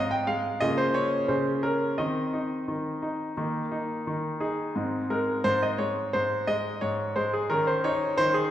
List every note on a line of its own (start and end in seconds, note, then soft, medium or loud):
0.00 0.60 G#2 medium
0.00 0.26 G#3 medium
0.00 0.57 C4 soft
0.00 0.57 D#4 soft
0.00 0.11 D#5 loud
0.11 0.28 G5 medium
0.27 0.60 G#3 medium
0.27 0.61 F5 medium
0.60 1.27 C#3 medium
0.60 1.96 A#3 soft
0.60 1.96 F4 soft
0.60 0.78 D#5 loud
0.78 0.95 C5 medium
0.94 1.62 C#4 medium
0.94 1.29 C#5 medium
1.28 1.97 C#3 medium
1.28 1.64 C5 medium
1.63 1.98 C#4 medium
1.63 1.99 A#4 medium
1.98 2.67 D#3 medium
1.98 3.34 C4 soft
1.98 2.32 D#4 soft
1.98 4.42 D#5 medium
2.34 3.01 D#4 medium
2.68 3.36 D#3 medium
3.02 3.36 D#4 medium
3.37 4.06 D#3 medium
3.37 4.72 A#3 soft
3.37 3.70 D#4 soft
3.71 4.39 D#4 medium
4.07 4.75 D#3 medium
4.40 4.75 D#4 medium
4.40 5.11 G#4 medium
4.76 5.43 G#2 medium
4.76 7.46 C4 soft
4.76 7.46 D#4 soft
5.10 5.77 G#3 medium
5.10 5.45 A#4 medium
5.44 6.13 G#2 medium
5.44 5.62 C5 loud
5.63 5.80 D#5 medium
5.78 6.46 G#3 medium
5.78 6.13 C#5 medium
6.13 6.80 G#2 medium
6.13 6.48 C5 medium
6.47 7.14 G#3 medium
6.47 6.82 D#5 loud
6.81 7.48 G#2 medium
6.81 7.16 C#5 medium
7.16 7.49 G#3 medium
7.16 7.33 C5 medium
7.33 7.50 G#4 medium
7.50 8.17 D#3 medium
7.50 8.51 C#4 soft
7.50 7.83 D#4 soft
7.50 7.67 A#4 medium
7.67 7.84 C5 medium
7.84 8.49 D#4 medium
7.84 8.18 C#5 medium
8.18 8.51 D#3 medium
8.18 8.35 C5 loud
8.34 8.51 G#4 medium